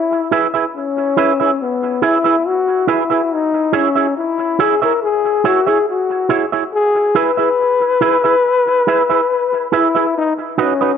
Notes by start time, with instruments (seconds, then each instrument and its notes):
Already playing: trombone E4
0.32 clean electric guitar E4 G#4 B4 E5
0.54 clean electric guitar E4 G#4 B4 E5
0.76 trombone C#4
1.17 clean electric guitar E4 G#4 B4 E5
1.40 clean electric guitar E4 G#4 B4 E5
1.62 trombone B3
2.02 clean electric guitar E4 G#4 B4 E5, trombone E4
2.24 clean electric guitar E4 G#4 B4 E5
2.47 trombone F#4
2.87 clean electric guitar E4 G#4 B4 E5, trombone E4
3.10 clean electric guitar E4 G#4 B4 E5
3.33 trombone D#4
3.73 trombone C#4, clean electric guitar E4 G#4 C#5 E5
3.95 clean electric guitar E4 G#4 C#5 E5
4.17 trombone E4
4.59 clean electric guitar E4 G#4 C#5 E5, trombone G#4
4.82 clean electric guitar E4 G#4 C#5 E5, trombone A#4
5.02 trombone G#4
5.44 clean electric guitar E4 G#4 C#5 E5, trombone F#4
5.66 clean electric guitar E4 G#4 C#5 E5, trombone G#4
5.90 trombone F#4
6.29 clean electric guitar E4 G#4 C#5 E5
6.52 clean electric guitar E4 G#4 C#5 E5
6.75 trombone G#4
7.15 clean electric guitar E4 G#4 B4 E5, trombone B4
7.37 clean electric guitar E4 G#4 B4 E5
8.01 clean electric guitar E4 G#4 B4 E5
8.24 clean electric guitar E4 G#4 B4 E5
8.87 clean electric guitar E4 G#4 B4 E5
9.10 clean electric guitar E4 G#4 B4 E5
9.72 clean electric guitar E4 G#4 B4 E5, trombone E4
9.95 clean electric guitar E4 G#4 B4 E5
10.18 trombone D#4
10.58 trombone C#4, clean electric guitar D#4 F#4 B4 D#5
10.81 clean electric guitar D#4 F#4 B4 D#5